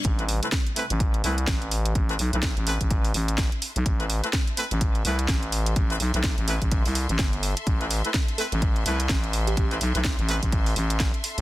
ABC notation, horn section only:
X:1
M:4/4
L:1/16
Q:"Swing 16ths" 1/4=126
K:Am
V:1 name="Horn section"
z [A,CEB] z [A,CEB] z2 [A,CEB] z3 [A,CEB] z4 z | z [A,CEB] z [A,CEB] z2 [A,CEB] z8 z | z [A,CEB] z [A,CEB] z2 [A,CEB] z3 [A,CEB] z4 z | z [A,CEB] z [A,CEB] z2 [A,CEB] z8 z |
z [A,CEB] z [A,CEB] z2 [A,CEB] z3 [A,CEB] z4 z | z [A,CEB] z [A,CEB] z2 [A,CEB] z8 z |]